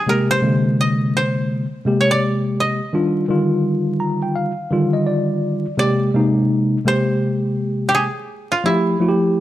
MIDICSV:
0, 0, Header, 1, 3, 480
1, 0, Start_track
1, 0, Tempo, 714286
1, 50, Time_signature, 4, 2, 24, 8
1, 6318, End_track
2, 0, Start_track
2, 0, Title_t, "Koto"
2, 0, Program_c, 0, 107
2, 0, Note_on_c, 0, 68, 74
2, 62, Note_on_c, 0, 70, 86
2, 207, Note_on_c, 0, 72, 106
2, 542, Note_on_c, 0, 75, 84
2, 781, Note_off_c, 0, 72, 0
2, 784, Note_on_c, 0, 72, 98
2, 1289, Note_off_c, 0, 68, 0
2, 1298, Note_off_c, 0, 70, 0
2, 1348, Note_on_c, 0, 73, 77
2, 1389, Note_off_c, 0, 72, 0
2, 1418, Note_on_c, 0, 74, 97
2, 1458, Note_off_c, 0, 73, 0
2, 1458, Note_off_c, 0, 75, 0
2, 1749, Note_on_c, 0, 75, 74
2, 1789, Note_off_c, 0, 74, 0
2, 3392, Note_off_c, 0, 75, 0
2, 3892, Note_on_c, 0, 74, 93
2, 4622, Note_on_c, 0, 72, 97
2, 4968, Note_off_c, 0, 74, 0
2, 5300, Note_on_c, 0, 67, 76
2, 5340, Note_on_c, 0, 68, 88
2, 5380, Note_off_c, 0, 67, 0
2, 5723, Note_on_c, 0, 65, 73
2, 5775, Note_off_c, 0, 72, 0
2, 5817, Note_on_c, 0, 64, 70
2, 5857, Note_off_c, 0, 65, 0
2, 6318, Note_off_c, 0, 64, 0
2, 6318, Note_off_c, 0, 68, 0
2, 6318, End_track
3, 0, Start_track
3, 0, Title_t, "Tine electric piano"
3, 0, Program_c, 1, 4
3, 43, Note_on_c, 1, 48, 64
3, 50, Note_on_c, 1, 56, 62
3, 53, Note_on_c, 1, 58, 62
3, 57, Note_on_c, 1, 67, 67
3, 255, Note_off_c, 1, 48, 0
3, 259, Note_off_c, 1, 56, 0
3, 261, Note_off_c, 1, 58, 0
3, 262, Note_off_c, 1, 67, 0
3, 280, Note_on_c, 1, 48, 76
3, 288, Note_on_c, 1, 56, 64
3, 291, Note_on_c, 1, 58, 68
3, 296, Note_on_c, 1, 50, 81
3, 1102, Note_off_c, 1, 48, 0
3, 1106, Note_off_c, 1, 56, 0
3, 1107, Note_off_c, 1, 58, 0
3, 1110, Note_off_c, 1, 50, 0
3, 1244, Note_on_c, 1, 48, 69
3, 1252, Note_on_c, 1, 56, 65
3, 1255, Note_on_c, 1, 58, 62
3, 1260, Note_on_c, 1, 67, 66
3, 1873, Note_off_c, 1, 48, 0
3, 1877, Note_off_c, 1, 56, 0
3, 1879, Note_off_c, 1, 58, 0
3, 1882, Note_off_c, 1, 67, 0
3, 1968, Note_on_c, 1, 51, 67
3, 1973, Note_on_c, 1, 55, 61
3, 1977, Note_on_c, 1, 62, 62
3, 1981, Note_on_c, 1, 65, 82
3, 2178, Note_off_c, 1, 51, 0
3, 2181, Note_off_c, 1, 55, 0
3, 2182, Note_off_c, 1, 62, 0
3, 2185, Note_off_c, 1, 65, 0
3, 2204, Note_on_c, 1, 51, 74
3, 2211, Note_on_c, 1, 55, 66
3, 2216, Note_on_c, 1, 50, 62
3, 2221, Note_on_c, 1, 65, 83
3, 2688, Note_on_c, 1, 82, 69
3, 2827, Note_off_c, 1, 82, 0
3, 2839, Note_on_c, 1, 79, 60
3, 2924, Note_off_c, 1, 79, 0
3, 2927, Note_on_c, 1, 77, 70
3, 3024, Note_off_c, 1, 51, 0
3, 3027, Note_off_c, 1, 55, 0
3, 3029, Note_off_c, 1, 50, 0
3, 3032, Note_off_c, 1, 65, 0
3, 3163, Note_on_c, 1, 51, 76
3, 3169, Note_on_c, 1, 55, 69
3, 3171, Note_on_c, 1, 50, 66
3, 3177, Note_on_c, 1, 65, 82
3, 3290, Note_off_c, 1, 77, 0
3, 3315, Note_on_c, 1, 75, 59
3, 3401, Note_off_c, 1, 75, 0
3, 3404, Note_on_c, 1, 74, 77
3, 3793, Note_off_c, 1, 51, 0
3, 3796, Note_off_c, 1, 55, 0
3, 3797, Note_off_c, 1, 50, 0
3, 3800, Note_off_c, 1, 65, 0
3, 3860, Note_off_c, 1, 74, 0
3, 3880, Note_on_c, 1, 48, 74
3, 3885, Note_on_c, 1, 56, 64
3, 3890, Note_on_c, 1, 58, 65
3, 3894, Note_on_c, 1, 67, 80
3, 4094, Note_off_c, 1, 48, 0
3, 4096, Note_off_c, 1, 56, 0
3, 4099, Note_off_c, 1, 58, 0
3, 4101, Note_off_c, 1, 67, 0
3, 4125, Note_on_c, 1, 48, 79
3, 4128, Note_on_c, 1, 56, 70
3, 4134, Note_on_c, 1, 58, 71
3, 4140, Note_on_c, 1, 63, 87
3, 4546, Note_off_c, 1, 48, 0
3, 4547, Note_off_c, 1, 56, 0
3, 4550, Note_off_c, 1, 58, 0
3, 4553, Note_off_c, 1, 63, 0
3, 4603, Note_on_c, 1, 48, 66
3, 4608, Note_on_c, 1, 56, 60
3, 4612, Note_on_c, 1, 58, 62
3, 4617, Note_on_c, 1, 67, 70
3, 5423, Note_off_c, 1, 48, 0
3, 5426, Note_off_c, 1, 56, 0
3, 5427, Note_off_c, 1, 58, 0
3, 5430, Note_off_c, 1, 67, 0
3, 5805, Note_on_c, 1, 53, 74
3, 5812, Note_on_c, 1, 57, 59
3, 5816, Note_on_c, 1, 64, 63
3, 5819, Note_on_c, 1, 67, 74
3, 6016, Note_off_c, 1, 53, 0
3, 6020, Note_off_c, 1, 57, 0
3, 6022, Note_off_c, 1, 64, 0
3, 6024, Note_off_c, 1, 67, 0
3, 6047, Note_on_c, 1, 53, 77
3, 6050, Note_on_c, 1, 57, 61
3, 6057, Note_on_c, 1, 64, 74
3, 6063, Note_on_c, 1, 66, 67
3, 6105, Note_on_c, 1, 67, 86
3, 6110, Note_off_c, 1, 66, 0
3, 6318, Note_off_c, 1, 53, 0
3, 6318, Note_off_c, 1, 57, 0
3, 6318, Note_off_c, 1, 64, 0
3, 6318, Note_off_c, 1, 67, 0
3, 6318, End_track
0, 0, End_of_file